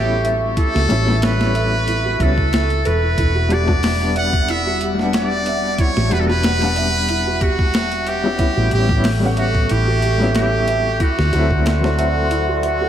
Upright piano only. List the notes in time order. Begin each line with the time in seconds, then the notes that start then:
Already playing: G3 B3 C#4 E4
0.89 G3 B3 C#4 E4
1.06 G3 B3 C#4 E4
1.37 G3 B3 C#4
1.43 E4
2.19 G3 B3 C#4 E4
3.49 G3 B3 D4 F#4
3.66 G3 B3 D4 F#4
3.97 G3 B3
4.01 D4
4.95 G3 B3
4.99 D4 F#5
6.10 G3 B3 D4 F#4
6.27 G3 B3 D4 F#4
6.59 G3 B3
6.63 D4 F#5
8.24 G3 B3 C#4 E4
8.71 G3 B3 C#4 E4
8.89 G3 B3 C#4 E4
9.20 G3 B3 C#4
9.26 F#5
10.17 G3 B3 C#4
10.24 E4
11.32 F#3 A3 C4 E4
11.50 F#3 A3 E4
11.81 F#3 A3
11.85 C4 E4